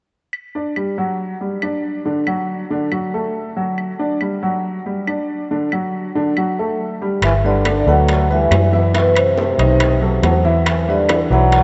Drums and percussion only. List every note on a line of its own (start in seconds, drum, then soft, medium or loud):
0.33 claves medium
0.76 claves medium
1.62 claves medium
2.27 claves medium
2.92 claves medium
3.78 claves soft
4.21 claves medium
5.07 claves medium
5.72 claves medium
6.37 claves medium
7.22 high bongo medium
7.22 high timbale medium
7.22 claves medium
7.65 high bongo medium
7.65 high timbale medium
7.65 low timbale medium
7.65 claves medium
7.88 high bongo soft
8.09 high bongo medium
8.09 high timbale medium
8.31 high bongo soft
8.51 high bongo soft
8.51 low bongo medium
8.51 high timbale medium
8.51 low timbale medium
8.51 claves medium
8.73 high bongo soft
8.95 high bongo medium
8.95 high timbale medium
9.16 high timbale medium
9.16 claves medium
9.37 high bongo medium
9.37 low timbale medium
9.59 high bongo soft
9.59 high timbale medium
9.80 high bongo medium
9.80 high timbale medium
9.80 claves medium
10.03 high bongo soft
10.23 high bongo soft
10.23 low bongo medium
10.23 high timbale medium
10.23 low timbale medium
10.45 high bongo soft
10.66 high bongo medium
10.66 high timbale medium
10.66 claves medium
11.09 high bongo medium
11.09 high timbale medium
11.09 low timbale medium
11.09 claves medium
11.31 high bongo soft
11.52 high bongo medium
11.52 high timbale medium